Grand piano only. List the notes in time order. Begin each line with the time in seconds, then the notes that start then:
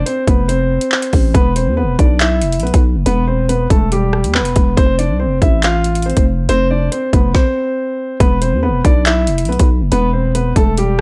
0.06 C4 C5
0.28 B3 B4
0.48 C4 C5
1.34 B3 B4
1.56 C4 C5
1.77 B3 B4
1.99 D4 D5
2.20 E4 E5
2.63 B3 B4
3.06 B3 B4
3.27 C4 C5
3.49 B3 B4
3.71 A3 A4
3.92 G3 G4
4.35 B3 B4
4.77 C4 C5
4.98 D4 D5
5.20 C4 C5
5.42 E4 E5
5.64 F4 F5
6.06 C4 C5
6.49 C4 C5
6.71 D4 D5
6.92 C4 C5
7.14 B3 B4
7.34 C4 C5
8.20 B3 B4
8.41 C4 C5
8.63 B3 B4
8.85 D4 D5
9.06 E4 E5
9.49 B3 B4
9.92 B3 B4
10.13 C4 C5
10.35 B3 B4
10.56 A3 A4
10.78 G3 G4